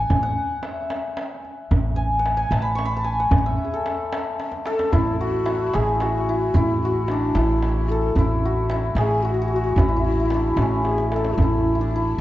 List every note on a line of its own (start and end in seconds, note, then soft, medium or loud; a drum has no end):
0.00 0.22 F#5 medium
0.00 1.96 G#5 medium
0.10 0.35 A1 medium
0.10 tombak dum medium
0.23 2.19 F#5 medium
0.63 2.92 E5 medium
0.63 tombak tek medium
0.90 tombak tek medium
1.17 tombak tek medium
1.45 tombak ka soft
1.71 2.48 A1 medium
1.71 tombak dum medium
1.96 2.37 G#5 medium
2.19 3.19 F#5 medium
2.26 tombak tek medium
2.37 2.58 G#5 loud
2.51 3.28 A1 medium
2.51 2.96 A5 loud
2.51 tombak tek medium
2.62 2.85 B5 medium
2.75 4.44 C#6 medium
2.75 tombak tek medium
2.85 4.65 B5 loud
2.97 3.10 A5 medium
3.04 3.80 G#5 medium
3.04 tombak ka soft
3.20 3.38 F#5 medium
3.31 3.56 A1 medium
3.31 tombak dum loud
3.38 5.52 F#5 medium
3.46 5.76 E5 medium
3.64 3.80 G#4 medium
3.74 4.66 A4 medium
3.86 tombak tek medium
4.13 tombak tek medium
4.40 tombak tek medium
4.52 tombak ka medium
4.66 4.94 A4 medium
4.66 5.80 A4 loud
4.66 tombak tek medium
4.79 tombak ka medium
4.93 5.70 A1 medium
4.93 5.20 E4 medium
4.93 5.45 E4 medium
4.93 tombak dum medium
5.20 5.77 F#4 medium
5.20 6.01 F#4 medium
5.20 tombak ka soft
5.45 6.29 E4 medium
5.45 tombak tek medium
5.74 6.51 A1 medium
5.74 7.98 G#4 medium
5.74 5.95 G#4 medium
5.74 tombak tek medium
5.95 6.05 G#4 medium
6.00 6.84 F#4 medium
6.00 6.57 F#4 medium
6.00 tombak tek medium
6.28 6.56 E4 medium
6.28 tombak ka soft
6.54 7.31 A1 medium
6.54 6.82 E4 medium
6.54 7.36 E4 medium
6.54 tombak dum medium
6.82 7.09 F#4 medium
6.82 8.45 F#4 medium
6.82 tombak ka soft
7.08 7.37 D4 medium
7.08 10.33 D4 medium
7.08 tombak tek medium
7.35 8.12 A1 medium
7.35 7.91 E4 medium
7.35 8.18 E4 medium
7.35 tombak tek medium
7.62 tombak tek medium
7.89 8.18 A4 medium
7.89 9.04 A4 medium
7.89 tombak ka soft
8.15 8.92 A1 medium
8.15 8.69 E4 medium
8.15 8.71 E4 medium
8.15 tombak dum medium
8.42 9.24 F#4 medium
8.42 tombak ka soft
8.70 9.78 E4 medium
8.70 tombak tek medium
8.95 9.72 A1 medium
8.95 9.24 G#4 medium
8.95 11.22 G#4 medium
8.95 tombak tek medium
9.23 9.50 F#4 medium
9.23 9.34 F#4 medium
9.34 9.41 F#4 medium
9.42 9.47 F#4 medium
9.48 9.56 F#4 medium
9.48 9.78 F#4 medium
9.48 tombak ka soft
9.56 9.63 F#4 medium
9.64 12.21 F#4 medium
9.76 10.53 A1 medium
9.76 10.03 E4 medium
9.76 9.88 E4 medium
9.76 tombak dum loud
9.89 9.96 E4 medium
9.96 10.04 E4 medium
10.04 10.11 E4 medium
10.04 10.59 E4 medium
10.04 tombak ka soft
10.12 10.19 E4 medium
10.20 10.25 E4 medium
10.25 11.42 E4 medium
10.30 10.68 D4 medium
10.30 tombak tek medium
10.57 11.33 A1 medium
10.57 10.85 C#4 medium
10.57 tombak tek medium
10.62 11.87 C#4 medium
10.83 11.10 G#4 medium
10.83 tombak tek medium
10.98 tombak ka medium
11.10 11.38 A4 medium
11.10 tombak tek medium
11.16 12.21 A4 medium
11.24 tombak ka medium
11.37 12.14 A1 medium
11.37 11.77 E4 medium
11.37 tombak dum loud
11.42 11.75 E4 medium
11.66 tombak ka soft
11.75 11.92 D4 medium
11.75 11.95 E4 medium
11.81 12.21 D4 medium
11.91 12.21 E4 medium
11.96 12.21 E4 medium